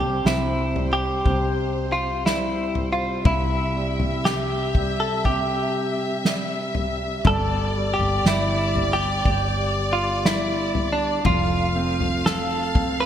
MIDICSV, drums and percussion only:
0, 0, Header, 1, 2, 480
1, 0, Start_track
1, 0, Key_signature, 0, "major"
1, 0, Tempo, 1000000
1, 1560, Time_signature, 4, 2, 24, 8
1, 6268, End_track
2, 0, Start_track
2, 0, Title_t, "Drums"
2, 2, Note_on_c, 9, 43, 56
2, 50, Note_off_c, 9, 43, 0
2, 125, Note_on_c, 9, 38, 117
2, 173, Note_off_c, 9, 38, 0
2, 364, Note_on_c, 9, 43, 60
2, 412, Note_off_c, 9, 43, 0
2, 603, Note_on_c, 9, 36, 76
2, 604, Note_on_c, 9, 43, 59
2, 651, Note_off_c, 9, 36, 0
2, 652, Note_off_c, 9, 43, 0
2, 1087, Note_on_c, 9, 38, 86
2, 1135, Note_off_c, 9, 38, 0
2, 1321, Note_on_c, 9, 43, 65
2, 1369, Note_off_c, 9, 43, 0
2, 1561, Note_on_c, 9, 36, 104
2, 1562, Note_on_c, 9, 43, 97
2, 1609, Note_off_c, 9, 36, 0
2, 1610, Note_off_c, 9, 43, 0
2, 1918, Note_on_c, 9, 43, 63
2, 1966, Note_off_c, 9, 43, 0
2, 2041, Note_on_c, 9, 38, 108
2, 2089, Note_off_c, 9, 38, 0
2, 2279, Note_on_c, 9, 36, 90
2, 2279, Note_on_c, 9, 43, 64
2, 2327, Note_off_c, 9, 36, 0
2, 2327, Note_off_c, 9, 43, 0
2, 2517, Note_on_c, 9, 43, 54
2, 2520, Note_on_c, 9, 36, 86
2, 2565, Note_off_c, 9, 43, 0
2, 2568, Note_off_c, 9, 36, 0
2, 3001, Note_on_c, 9, 38, 80
2, 3049, Note_off_c, 9, 38, 0
2, 3239, Note_on_c, 9, 43, 70
2, 3287, Note_off_c, 9, 43, 0
2, 3479, Note_on_c, 9, 43, 102
2, 3480, Note_on_c, 9, 36, 96
2, 3527, Note_off_c, 9, 43, 0
2, 3528, Note_off_c, 9, 36, 0
2, 3842, Note_on_c, 9, 43, 56
2, 3890, Note_off_c, 9, 43, 0
2, 3964, Note_on_c, 9, 38, 118
2, 4012, Note_off_c, 9, 38, 0
2, 4202, Note_on_c, 9, 43, 65
2, 4250, Note_off_c, 9, 43, 0
2, 4441, Note_on_c, 9, 43, 54
2, 4442, Note_on_c, 9, 36, 84
2, 4489, Note_off_c, 9, 43, 0
2, 4490, Note_off_c, 9, 36, 0
2, 4922, Note_on_c, 9, 38, 87
2, 4970, Note_off_c, 9, 38, 0
2, 5160, Note_on_c, 9, 43, 58
2, 5208, Note_off_c, 9, 43, 0
2, 5400, Note_on_c, 9, 43, 107
2, 5402, Note_on_c, 9, 36, 103
2, 5448, Note_off_c, 9, 43, 0
2, 5450, Note_off_c, 9, 36, 0
2, 5761, Note_on_c, 9, 43, 59
2, 5809, Note_off_c, 9, 43, 0
2, 5885, Note_on_c, 9, 38, 106
2, 5933, Note_off_c, 9, 38, 0
2, 6121, Note_on_c, 9, 36, 93
2, 6121, Note_on_c, 9, 43, 68
2, 6169, Note_off_c, 9, 36, 0
2, 6169, Note_off_c, 9, 43, 0
2, 6268, End_track
0, 0, End_of_file